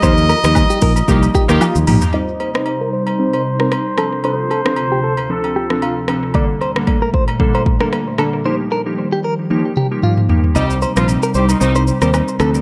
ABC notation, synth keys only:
X:1
M:4/4
L:1/16
Q:"Swing 16ths" 1/4=114
K:Cdor
V:1 name="Synth keys"
[F,B,EG]2 z [F,B,EG] z4 [F,B,EG]2 z [F,B,EG]3 [F,B,EG]2 | [G,CEc]2 z [G,CEc] z4 [G,CEc]2 z [G,CEc] z2 [F,CDA]2 | [F,CDA]2 z [F,CDA] z4 [F,CDA]2 z [F,CDA]3 [F,CDA]2 | [D,G,B,DA]2 z [D,G,B,DA] z4 [D,G,B,DA]2 z [D,G,B,DA] z2 [D,G,B,DA]2 |
[F,B,EG]2 z [F,B,EG] z4 [F,B,EG]2 z [F,B,EG]3 [F,B,EG]2 | [G,CEc]2 z [G,CEc] z4 [G,CEc]2 z [G,CEc] z2 [F,CDA]2 |]